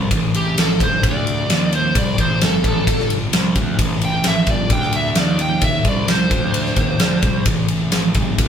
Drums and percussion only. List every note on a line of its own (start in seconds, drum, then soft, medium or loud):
0.11 kick loud
0.11 ride loud
0.34 ride medium
0.58 snare loud
0.58 ride medium
0.80 kick loud
0.80 ride medium
1.03 kick loud
1.03 ride medium
1.27 ride medium
1.50 snare loud
1.50 ride medium
1.73 ride medium
1.95 kick loud
1.95 ride medium
2.18 kick medium
2.18 ride medium
2.41 snare loud
2.41 ride medium
2.64 kick medium
2.64 ride medium
2.87 kick loud
2.87 ride medium
3.00 snare soft
3.10 ride medium
3.33 snare loud
3.33 ride loud
3.56 kick medium
3.56 ride medium
3.79 kick loud
3.79 ride loud
4.01 ride medium
4.24 snare loud
4.24 ride medium
4.47 kick loud
4.47 ride medium
4.70 kick loud
4.70 ride medium
4.82 snare soft
4.93 ride medium
5.15 snare loud
5.15 ride medium
5.39 ride medium
5.61 kick loud
5.61 ride medium
5.85 kick loud
5.85 ride medium
6.08 snare loud
6.08 ride medium
6.31 kick loud
6.31 ride medium
6.54 ride medium
6.66 snare soft
6.76 kick loud
6.76 ride medium
7.00 snare loud
7.00 ride medium
7.22 kick loud
7.22 ride medium
7.46 kick loud
7.46 ride medium
7.68 ride medium
7.92 snare loud
7.92 ride loud
8.14 kick loud
8.14 ride medium
8.38 kick loud
8.38 ride loud